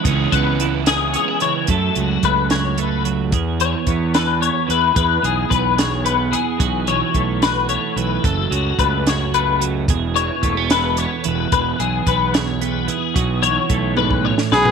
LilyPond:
<<
  \new Staff \with { instrumentName = "Clean electric guitar" } { \time 6/8 \key e \major \tempo 4. = 73 gis'8 b'4 gis'8 gis'8 cis''8 | a'8 fis'8 b'8 cis''8 b'8 r8 | r8 cis''4 b'8 cis''8 b'8 | b'8 gis'8 b'8 cis''8 b'8 gis'8~ |
gis'8 cis''4 b'8 cis''8 b'8 | a'8 fis'8 b'8 cis''8 b'8 r8 | r8 cis''4 b'8 cis''8 b'8 | b'8 gis'8 b'8 cis''8 b'8 gis'8~ |
gis'8 cis''4 b'8 cis''8 b'8 | }
  \new Staff \with { instrumentName = "Trumpet" } { \time 6/8 \key e \major r2. | r2. | r2. | r2. |
r2. | r2. | r2. | r2. |
r2 r8 gis'8 | }
  \new Staff \with { instrumentName = "Overdriven electric guitar" } { \time 6/8 \key e \major <cis gis cis' e'>2. | r2. | r2. | r2. |
r2. | r2. | r2. | r2. |
r2. | }
  \new Staff \with { instrumentName = "Clean electric guitar" } { \time 6/8 \key e \major << { r8 b8 e'8 gis'8 cis'16 e'8. | <fis a e' a'>4 a8 fis'8 a4 | gis'4 b8 a'8 b4 | gis'4 b8 gis'8 b4 |
fis'4 a8 fis'8 a4 | a'4 a8 fis'8 a4 | gis'4 a16 b16 a'8 b4 | gis'4 b8 gis'8 b4 |
fis'4 a2 | } \\ { <cis e>2~ <cis e>8 e8 | fis,8 fis2 fis8 | e,8 e2 e8 | e,8 e2 e8 |
b,8 e2 e8 | fis,8 fis2 fis8 | e,8 e2 e8 | e,8 e2 e8 |
b,8 e4 gis,8 a,8 b,8 | } >> }
  \new Staff \with { instrumentName = "Fingered electric bass" } { \clef bass \time 6/8 \key e \major cis,8 cis,2 r8 | fis,8 cis,8 cis,2 | e,4 e,4. e,8 | e,8 b,,8 b,,2 |
b,,4 b,,4. b,,8 | fis,,8 cis,8 cis,2 | e,,4 e,,4. e,,8 | e,,8 b,,8 b,,2 |
b,,4 b,,4. b,,8 | }
  \new DrumStaff \with { instrumentName = "Drums" } \drummode { \time 6/8 <hh bd>8 <hh bd>8 hh8 <hh sn>8 hh8 hh8 | <hh bd>8 hh8 <hh bd>8 <hh sn>8 hh8 hh8 | <hh bd>8 hh8 <hh bd>8 <hh sn>8 hh8 hh8 | <hh bd>8 hh8 <hh bd>8 <hh sn>8 hh8 hh8 |
<hh bd>8 hh8 <hh bd>8 <hh sn>8 hh8 hh8 | <hh bd>8 hh8 <hh bd>8 <hh sn>8 hh8 hh8 | <hh bd>8 hh8 <hh bd>8 <hh sn>8 hh8 hh8 | <hh bd>8 hh8 <hh bd>8 <hh sn>8 hh8 hh8 |
<hh bd>8 hh8 <hh bd>8 tommh16 bd8 sn16 sn16 tomfh16 | }
>>